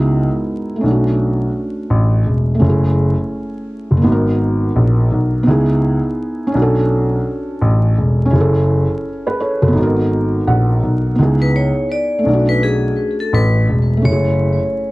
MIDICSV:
0, 0, Header, 1, 4, 480
1, 0, Start_track
1, 0, Tempo, 714286
1, 1757, Time_signature, 4, 2, 24, 8
1, 10023, End_track
2, 0, Start_track
2, 0, Title_t, "Vibraphone"
2, 0, Program_c, 0, 11
2, 7672, Note_on_c, 0, 71, 63
2, 7761, Note_off_c, 0, 71, 0
2, 7768, Note_on_c, 0, 73, 68
2, 7979, Note_off_c, 0, 73, 0
2, 8008, Note_on_c, 0, 74, 70
2, 8367, Note_off_c, 0, 74, 0
2, 8393, Note_on_c, 0, 71, 73
2, 8472, Note_off_c, 0, 71, 0
2, 8489, Note_on_c, 0, 68, 78
2, 8848, Note_off_c, 0, 68, 0
2, 8872, Note_on_c, 0, 69, 66
2, 8960, Note_off_c, 0, 69, 0
2, 8968, Note_on_c, 0, 71, 77
2, 9179, Note_off_c, 0, 71, 0
2, 9444, Note_on_c, 0, 73, 83
2, 10023, Note_off_c, 0, 73, 0
2, 10023, End_track
3, 0, Start_track
3, 0, Title_t, "Felt piano"
3, 0, Program_c, 1, 0
3, 0, Control_c, 1, 64, 127
3, 0, Note_on_c, 1, 56, 66
3, 0, Note_on_c, 1, 59, 57
3, 0, Note_on_c, 1, 63, 56
3, 0, Note_on_c, 1, 64, 71
3, 0, Note_on_c, 1, 66, 54
3, 0, Note_on_c, 1, 70, 66
3, 510, Note_on_c, 1, 57, 63
3, 543, Note_on_c, 1, 61, 60
3, 546, Note_off_c, 1, 56, 0
3, 554, Note_off_c, 1, 59, 0
3, 562, Note_off_c, 1, 63, 0
3, 566, Note_off_c, 1, 66, 0
3, 566, Control_c, 1, 64, 0
3, 570, Note_off_c, 1, 64, 0
3, 571, Note_off_c, 1, 70, 0
3, 576, Note_on_c, 1, 62, 57
3, 609, Note_on_c, 1, 66, 69
3, 700, Control_c, 1, 64, 127
3, 1701, Note_off_c, 1, 57, 0
3, 1711, Note_on_c, 1, 57, 69
3, 1726, Note_off_c, 1, 61, 0
3, 1742, Note_off_c, 1, 62, 0
3, 1745, Note_on_c, 1, 61, 65
3, 1759, Note_off_c, 1, 66, 0
3, 1765, Control_c, 1, 64, 0
3, 1776, Note_on_c, 1, 64, 57
3, 1811, Note_on_c, 1, 68, 69
3, 1892, Control_c, 1, 64, 127
3, 2668, Note_on_c, 1, 58, 62
3, 2674, Note_off_c, 1, 57, 0
3, 2691, Note_off_c, 1, 61, 0
3, 2700, Note_on_c, 1, 63, 64
3, 2707, Note_off_c, 1, 64, 0
3, 2712, Note_on_c, 1, 59, 78
3, 2725, Note_off_c, 1, 68, 0
3, 2726, Control_c, 1, 64, 0
3, 2732, Note_on_c, 1, 66, 70
3, 2746, Note_off_c, 1, 58, 0
3, 2767, Note_on_c, 1, 70, 85
3, 2856, Control_c, 1, 64, 127
3, 3640, Note_off_c, 1, 59, 0
3, 3649, Note_off_c, 1, 63, 0
3, 3650, Note_on_c, 1, 59, 83
3, 3666, Note_off_c, 1, 66, 0
3, 3667, Note_on_c, 1, 63, 67
3, 3683, Note_off_c, 1, 70, 0
3, 3683, Note_on_c, 1, 64, 76
3, 3685, Control_c, 1, 64, 0
3, 3700, Note_on_c, 1, 68, 81
3, 3785, Control_c, 1, 64, 127
3, 4348, Note_on_c, 1, 61, 80
3, 4381, Note_on_c, 1, 62, 67
3, 4383, Note_off_c, 1, 59, 0
3, 4392, Note_off_c, 1, 63, 0
3, 4400, Note_off_c, 1, 64, 0
3, 4405, Control_c, 1, 64, 0
3, 4408, Note_off_c, 1, 68, 0
3, 4413, Note_on_c, 1, 66, 71
3, 4447, Note_on_c, 1, 69, 85
3, 4520, Control_c, 1, 64, 127
3, 5538, Note_off_c, 1, 61, 0
3, 5548, Note_on_c, 1, 61, 80
3, 5565, Note_off_c, 1, 62, 0
3, 5581, Note_off_c, 1, 66, 0
3, 5581, Note_on_c, 1, 64, 73
3, 5599, Note_off_c, 1, 69, 0
3, 5606, Control_c, 1, 64, 0
3, 5613, Note_on_c, 1, 68, 67
3, 5646, Note_on_c, 1, 69, 83
3, 5723, Control_c, 1, 64, 127
3, 6075, Note_off_c, 1, 68, 0
3, 6092, Note_off_c, 1, 69, 0
3, 6227, Note_on_c, 1, 71, 59
3, 6230, Note_on_c, 1, 68, 47
3, 6313, Note_off_c, 1, 71, 0
3, 6315, Note_off_c, 1, 68, 0
3, 6318, Note_on_c, 1, 73, 68
3, 6322, Note_on_c, 1, 69, 61
3, 6454, Note_off_c, 1, 69, 0
3, 6458, Note_off_c, 1, 73, 0
3, 6464, Note_on_c, 1, 69, 61
3, 6467, Note_on_c, 1, 66, 52
3, 6504, Note_on_c, 1, 59, 75
3, 6513, Note_off_c, 1, 61, 0
3, 6530, Note_off_c, 1, 64, 0
3, 6536, Note_on_c, 1, 63, 68
3, 6559, Note_off_c, 1, 66, 0
3, 6565, Control_c, 1, 64, 0
3, 6569, Note_on_c, 1, 66, 68
3, 6604, Note_on_c, 1, 70, 86
3, 6692, Note_off_c, 1, 69, 0
3, 6696, Control_c, 1, 64, 127
3, 7038, Note_on_c, 1, 78, 62
3, 7470, Note_off_c, 1, 59, 0
3, 7487, Note_off_c, 1, 63, 0
3, 7491, Note_off_c, 1, 78, 0
3, 7495, Note_on_c, 1, 59, 62
3, 7504, Note_off_c, 1, 66, 0
3, 7511, Note_on_c, 1, 63, 60
3, 7521, Note_off_c, 1, 70, 0
3, 7525, Control_c, 1, 64, 0
3, 7527, Note_on_c, 1, 64, 59
3, 7543, Note_on_c, 1, 68, 75
3, 7631, Control_c, 1, 64, 127
3, 8190, Note_on_c, 1, 57, 71
3, 8223, Note_on_c, 1, 61, 59
3, 8226, Note_off_c, 1, 59, 0
3, 8234, Note_off_c, 1, 63, 0
3, 8242, Note_off_c, 1, 64, 0
3, 8246, Control_c, 1, 64, 0
3, 8250, Note_off_c, 1, 68, 0
3, 8255, Note_on_c, 1, 62, 62
3, 8288, Note_on_c, 1, 66, 73
3, 8353, Control_c, 1, 64, 127
3, 9378, Note_off_c, 1, 57, 0
3, 9388, Note_on_c, 1, 57, 66
3, 9406, Note_off_c, 1, 61, 0
3, 9420, Note_on_c, 1, 61, 62
3, 9422, Note_off_c, 1, 62, 0
3, 9439, Note_off_c, 1, 66, 0
3, 9446, Control_c, 1, 64, 0
3, 9454, Note_on_c, 1, 64, 61
3, 9488, Note_on_c, 1, 68, 74
3, 9553, Control_c, 1, 64, 127
3, 10023, Note_off_c, 1, 57, 0
3, 10023, Note_off_c, 1, 61, 0
3, 10023, Note_off_c, 1, 64, 0
3, 10023, Note_off_c, 1, 68, 0
3, 10023, End_track
4, 0, Start_track
4, 0, Title_t, "Grand piano"
4, 0, Program_c, 2, 0
4, 0, Note_on_c, 2, 37, 94
4, 182, Note_off_c, 2, 37, 0
4, 560, Note_on_c, 2, 35, 85
4, 983, Note_off_c, 2, 35, 0
4, 1278, Note_on_c, 2, 33, 87
4, 1490, Note_off_c, 2, 33, 0
4, 1518, Note_on_c, 2, 28, 74
4, 1730, Note_off_c, 2, 28, 0
4, 1757, Note_on_c, 2, 30, 92
4, 2100, Note_off_c, 2, 30, 0
4, 2627, Note_on_c, 2, 30, 86
4, 2707, Note_off_c, 2, 30, 0
4, 2719, Note_on_c, 2, 32, 86
4, 3143, Note_off_c, 2, 32, 0
4, 3197, Note_on_c, 2, 34, 89
4, 3410, Note_off_c, 2, 34, 0
4, 3438, Note_on_c, 2, 35, 75
4, 3650, Note_off_c, 2, 35, 0
4, 3679, Note_on_c, 2, 37, 93
4, 4021, Note_off_c, 2, 37, 0
4, 4400, Note_on_c, 2, 35, 93
4, 4823, Note_off_c, 2, 35, 0
4, 5117, Note_on_c, 2, 33, 90
4, 5329, Note_off_c, 2, 33, 0
4, 5359, Note_on_c, 2, 28, 77
4, 5571, Note_off_c, 2, 28, 0
4, 5598, Note_on_c, 2, 30, 89
4, 5941, Note_off_c, 2, 30, 0
4, 6466, Note_on_c, 2, 30, 92
4, 6547, Note_off_c, 2, 30, 0
4, 6556, Note_on_c, 2, 32, 84
4, 6981, Note_off_c, 2, 32, 0
4, 7038, Note_on_c, 2, 34, 83
4, 7250, Note_off_c, 2, 34, 0
4, 7279, Note_on_c, 2, 35, 75
4, 7490, Note_off_c, 2, 35, 0
4, 7519, Note_on_c, 2, 37, 93
4, 7861, Note_off_c, 2, 37, 0
4, 8239, Note_on_c, 2, 35, 86
4, 8663, Note_off_c, 2, 35, 0
4, 8958, Note_on_c, 2, 33, 90
4, 9170, Note_off_c, 2, 33, 0
4, 9198, Note_on_c, 2, 28, 78
4, 9410, Note_off_c, 2, 28, 0
4, 9439, Note_on_c, 2, 30, 93
4, 9781, Note_off_c, 2, 30, 0
4, 10023, End_track
0, 0, End_of_file